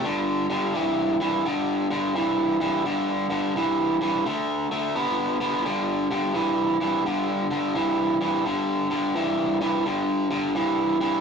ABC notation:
X:1
M:4/4
L:1/8
Q:"Swing" 1/4=86
K:G
V:1 name="Overdriven electric guitar" clef=bass
[G,,D,] [G,,D,] [G,,E,] [G,,E,] [G,,D,] [G,,D,] [G,,E,] [G,,E,] | [G,,D,] [G,,D,] [G,,E,] [G,,E,] [D,A,] [D,A,] [D,B,] [D,B,] | [G,,D,] [G,,D,] [G,,E,] [G,,E,] [G,,D,] [G,,D,] [G,,E,] [G,,E,] | [G,,D,] [G,,D,] [G,,E,] [G,,E,] [G,,D,] [G,,D,] [G,,E,] [G,,E,] |]